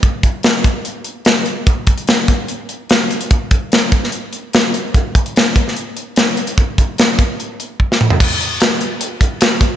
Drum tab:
CC |----------------|----------------|----------------|----------------|
HH |x-x-x-x-x-x-x-x-|x-xxx-x-x-x-x-xx|x-x-x-x-x-x-x-x-|x-xxx-x-x-x-x-xx|
SD |----o-------o---|----o-------o---|----o--o----o---|----o--o----o---|
T2 |----------------|----------------|----------------|----------------|
FT |----------------|----------------|----------------|----------------|
BD |o-o---o---------|o-o---o---------|o-o---o---------|o-o---o---------|

CC |----------------|x---------------|
HH |x-x-x-x-x-x-----|--x-x-x-x-x-x-x-|
SD |----o--------o--|----o-------o---|
T2 |--------------o-|----------------|
FT |---------------o|----------------|
BD |o-o---o-----o---|o---------o---o-|